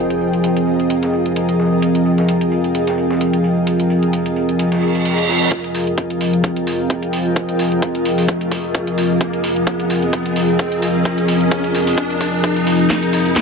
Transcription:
Already playing: F3 C4 F4 G#4 A#4 D#5 G5
0.10 closed hi-hat
0.21 closed hi-hat
0.33 closed hi-hat
0.44 closed hi-hat
0.57 closed hi-hat
0.67 closed hi-hat
0.80 closed hi-hat
0.90 closed hi-hat
1.03 snare, closed hi-hat
1.13 closed hi-hat
1.26 closed hi-hat
1.36 closed hi-hat
1.49 closed hi-hat
1.59 snare, closed hi-hat
1.82 closed hi-hat
1.95 closed hi-hat
2.06 closed hi-hat
2.18 snare, closed hi-hat
2.29 closed hi-hat
2.41 closed hi-hat
2.52 closed hi-hat
2.64 closed hi-hat
2.75 closed hi-hat
2.87 snare, closed hi-hat
2.98 closed hi-hat
3.10 snare
3.21 closed hi-hat
3.33 closed hi-hat
3.44 closed hi-hat
3.67 closed hi-hat
3.80 closed hi-hat
3.90 closed hi-hat
4.03 closed hi-hat
4.13 closed hi-hat
4.26 closed hi-hat
4.36 closed hi-hat
4.49 closed hi-hat
4.59 closed hi-hat, reverse cymbal
4.72 snare, closed hi-hat
4.83 closed hi-hat
4.95 closed hi-hat
5.05 closed hi-hat
5.18 closed hi-hat
5.29 snare, closed hi-hat
5.51 F3 C4 G#4 G5, kick, closed hi-hat, riser
5.62 A#4, closed hi-hat
5.75 open hi-hat
5.81 D#5
5.87 closed hi-hat
5.98 kick, closed hi-hat
6.10 closed hi-hat
6.21 open hi-hat
6.33 closed hi-hat
6.44 kick, closed hi-hat
6.56 closed hi-hat
6.67 open hi-hat
6.86 G#4, kick, closed hi-hat
7.03 closed hi-hat
7.13 open hi-hat
7.36 kick, closed hi-hat
7.49 closed hi-hat
7.59 open hi-hat
7.72 closed hi-hat
7.82 kick, closed hi-hat
7.95 closed hi-hat
8.05 open hi-hat
8.18 open hi-hat
8.28 kick, closed hi-hat
8.41 closed hi-hat
8.52 kick, open hi-hat
8.75 kick, closed hi-hat
8.87 closed hi-hat
8.98 open hi-hat
9.21 kick, closed hi-hat
9.33 closed hi-hat
9.44 open hi-hat
9.56 closed hi-hat
9.67 kick, closed hi-hat
9.80 closed hi-hat
9.90 open hi-hat
10.03 closed hi-hat
10.13 kick, closed hi-hat
10.26 closed hi-hat
10.36 open hi-hat
10.59 kick, closed hi-hat
10.72 closed hi-hat
10.82 open hi-hat
11.05 kick, closed hi-hat
11.18 closed hi-hat
11.28 open hi-hat
11.41 closed hi-hat
11.51 kick, closed hi-hat
11.64 closed hi-hat
11.75 open hi-hat
11.87 open hi-hat
11.98 kick, closed hi-hat
12.10 closed hi-hat
12.21 kick, open hi-hat
12.44 kick, closed hi-hat
12.56 closed hi-hat
12.67 open hi-hat
12.90 C6, kick, snare, closed hi-hat
13.03 closed hi-hat
13.13 open hi-hat
13.26 closed hi-hat
13.36 kick, snare, closed hi-hat

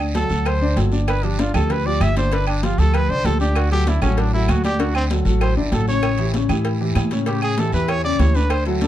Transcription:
Already playing: D2
0.00 high conga
0.14 F#3 F#4 A4, cowbell, high conga, short guiro
0.30 D2 F#3 F#4 A4, high conga, short guiro
0.45 C5, cowbell, high conga, low agogo, long guiro, claves
0.61 D3 D4 D5, high conga
0.76 G1 F#3 F#4 A4, cowbell, high conga, low agogo, short guiro
0.92 D3 D4 D5, high conga, short guiro
1.07 B4, cowbell, high conga, low agogo, long guiro, claves
1.23 F3 D4 F4 G4, high conga, low agogo
1.39 D3 D4 F4 D5, cowbell, high conga, short guiro
1.54 D2 F3 F4 G4 A4, high conga, low conga, low agogo, short guiro, claves
1.70 B4, cowbell, high conga, low conga, low agogo, long guiro
1.85 F3 F4 G4 D5, high conga
2.00 G1 E5, cowbell, high conga, low agogo, short guiro, claves
2.16 D3 D4 C5 D5, cowbell, high conga, short guiro
2.31 D3 D4 B4 D5, cowbell, low agogo, long guiro
2.47 D4, high conga, low agogo, claves
2.63 F3 F4 G4, cowbell, high conga, short guiro
2.78 D2 F3 F4 G4 A4, high conga, short guiro
2.94 B4, cowbell, high conga, low agogo, long guiro, claves
3.09 C2 D3 D4 C5 D5, high conga
3.24 D2 F3 F4 G4 A4, cowbell, high conga, low agogo, short guiro
3.40 D3 D4 G4 D5, short guiro
3.55 F#4, cowbell, high conga, low agogo, long guiro, claves
3.71 F#3 F#4 G4 A4, high conga, low agogo
3.86 D3 D4 E4 D5, cowbell, high conga, short guiro
4.02 A1 F#3 C#4 F#4 A4, high conga, low conga, low agogo, short guiro, claves
4.17 D4, cowbell, high conga, low agogo, long guiro
4.33 F#3 E4 F#4 A4, high conga
4.48 D2 F#4, cowbell, high conga, low agogo, short guiro, claves
4.64 D3 D4 G4 D5, cowbell, high conga, short guiro
4.79 D3 D4 F#4 D5, cowbell, high conga, low agogo, long guiro
4.95 C4, high conga, low agogo, claves
5.10 F#3 F#4 A4, cowbell, high conga, short guiro
5.25 A1 F#3 F#4 A4, high conga, short guiro
5.41 C5, cowbell, high conga, low agogo, long guiro, claves
5.56 G1 D3 D4 E4 D5, high conga
5.72 A1 F#3 F#4 A4, cowbell, high conga, low agogo, short guiro
5.88 C#3 C#4 C#5, short guiro
6.03 cowbell, low agogo, long guiro, claves
6.18 E3 E4 G4, high conga, low agogo
6.34 C#3 C#4 C#5, cowbell, high conga, short guiro
6.49 A2 E3 E4 G4, high conga, low conga, low agogo, short guiro, claves
6.65 cowbell, high conga, low agogo, long guiro
6.80 E3 E4 G4, high conga
6.95 A2, cowbell, high conga, low timbale, low agogo, short guiro, claves
7.11 C#3 C#4 C#5, cowbell, high conga, short guiro
7.26 C#3 C#4 G4 C#5, cowbell, high conga, low agogo, long guiro
7.42 G#4, high conga, low agogo, claves
7.57 E3 E4 G4 A4, cowbell, high conga, short guiro
7.72 E2 E3 E4 G4 B4, high conga, short guiro
7.88 C#5, cowbell, high conga, low agogo, long guiro, claves
8.04 C#3 C#4 C#5 D5, high conga
8.19 D2 E3 E4 G4 C#5, cowbell, high conga, low timbale, low agogo, short guiro
8.35 D3 D4 B4 D5, short guiro
8.50 C5, cowbell, high conga, low agogo, long guiro, claves
8.66 F#3 E4 F#4 A4, high conga, low agogo
8.81 D3 D4 A4 D5, cowbell, high conga, short guiro

